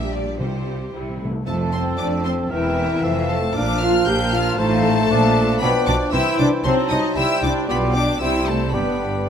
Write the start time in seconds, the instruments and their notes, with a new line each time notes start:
Already playing: double bass section A#1, cello section A#2, viola section G3 G4, french horn section G3 D4, violin section G4 E5
0.13 violin section D5
0.40 double bass section C2, cello section C3, timpani C3, viola section G3 G4, french horn section G3 F4, violin section G4 C5
0.93 double bass section C2, cello section C3, timpani C3, viola section G3 E4, french horn section G3
1.02 timpani C3
1.09 timpani C3
1.17 timpani C3, french horn section A3
1.25 timpani C3
1.32 timpani C3
1.46 double bass section F1, cello section F2, bassoon F3, french horn section A3, viola section A3, clarinet C4, violin section A4 A5, cor anglais A4, flute section A5
1.73 viola section C4, french horn section C4, violin section C5 C6
1.98 double bass section F1, cello section F2, french horn section D4, viola section D4, violin section D5 D6
2.25 viola section C4, french horn section C4, violin section C5 C6
2.50 double bass section E1, cello section E2, viola section E3, bassoon E3, french horn section E3, clarinet C4, violin section E4 E5, cor anglais A#4, flute section G5
3.02 double bass section F1, cello section F2, bassoon F3, clarinet C4, cor anglais A4, flute section F5
3.29 viola section A3, french horn section A3, violin section A4 A5
3.55 double bass section A#1, cello section A#2, bassoon F3, viola section D4, clarinet D4, french horn section D4, cor anglais A#4, violin section D5 D6, flute section F5
3.81 viola section F4, french horn section F4, violin section F5 F6
4.06 double bass section A#1, cello section A#2, french horn section G4, viola section G4, violin section G5 G6
4.32 french horn section F4, viola section F4, violin section F5 F6
4.58 double bass section A1, cello section A2, bassoon F3, french horn section A3, viola section A3, clarinet D#4, violin section A4 A5, cor anglais C5, flute section F5
5.10 double bass section A#1, cello section A#2, bassoon F3, clarinet D4, cor anglais D5, flute section F5
5.61 double bass section B1, cello section B2, bassoon F3, french horn section B3, viola section B3, clarinet D4, violin section B4 B5, cor anglais D5, flute section G5
5.86 double bass section B1, cello section B2, viola section D4, french horn section D4, violin section D5 D6
6.12 double bass section C2, cello section C3, bassoon E3, clarinet E4, viola section E4, french horn section E4, cor anglais C5, violin section E5 E6, flute section G5
6.39 double bass section C2, cello section C3, viola section D4, french horn section D4, violin section D5 D6
6.64 double bass section C2, cello section C3, bassoon F#3, viola section C4, french horn section C4, clarinet D#4, cor anglais C5, violin section C5 C6, flute section A5
6.90 double bass section C2, cello section C3, viola section D#4, french horn section D#4, violin section D#5 D#6
7.16 double bass section C2, cello section C3, bassoon G3, viola section E4, clarinet E4, french horn section E4, cor anglais C5, violin section E5 E6, flute section G5
7.42 double bass section C2, cello section C3, viola section D4, french horn section D4, violin section D5 D6
7.67 double bass section B1, cello section B2, bassoon G3, viola section B3, french horn section B3, clarinet F4, violin section B4 B5, cor anglais D5, flute section G5
7.93 viola section D4, french horn section D4, violin section D5 D6
8.20 double bass section C2, cello section C3, bassoon G3, viola section E4, french horn section E4, clarinet E4, cor anglais C5, violin section E5 E6, flute section G5
8.46 french horn section A3, viola section A3, violin section A4 A5
8.72 double bass section G1, cello section G2, bassoon G3, viola section B3, french horn section B3, clarinet D4, violin section B4 B5, cor anglais D5, flute section G5